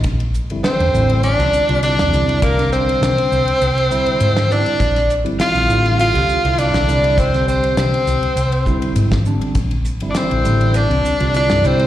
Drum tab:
RD |xx-xxx-xxx-xxx-x|xx-xxx-xxx-xxx-x|xx-xxx-xxx-xxx-x|xx-xxx-xxx-xxx-x|
HH |p-p-p-p-p-p-p-p-|p-p-p-p-p-p-p-p-|p-p-p-p-p-p-p-p-|p-p-p-p-p-p-p-p-|
SD |----o----o---o--|-o--o--------o--|-o--o--------o--|-o--o--------o--|
BD |o---------------|o---------------|o---------------|o---------o--o--|

RD |xx-xxx-xxx-xxx-x|
HH |p-p-p-p-p-p-p-p-|
SD |----o--------o--|
BD |o---------------|